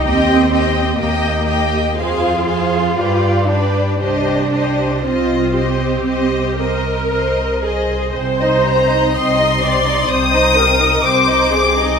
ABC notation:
X:1
M:4/4
L:1/16
Q:1/4=60
K:Cm
V:1 name="Violin section"
g2 g2 g2 g2 f2 f2 d2 d2 | e2 e2 e2 e2 e2 e2 e2 e2 | z2 b2 c'4 e'4 d'4 |]
V:2 name="Violin section"
e2 e2 e2 e2 c2 c2 =B2 B2 | c2 c2 c2 c2 c2 c2 c2 c2 | [Cc] [Ee] [Cc] [Ee] [Cc] [Ee] [Cc] [Ee] [Cc] [Ee] [Cc] [Ee] [Cc] [Ee] [Cc] [Ee] |]
V:3 name="Viola section"
G2 G2 G2 G2 A2 A2 G2 G2 | G2 G2 F2 G4 B4 A2 | c4 e2 d2 c2 B2 c2 A2 |]
V:4 name="Cello section"
C4 B,4 F6 D2 | D4 C8 z4 | C,4 C,4 C,4 C,4 |]
V:5 name="Double bass section" clef=bass
E,,4 E,,4 F,,4 G,,4 | C,,4 C,,4 C,,4 C,,4 | C,,4 C,,4 C,,4 C,,4 |]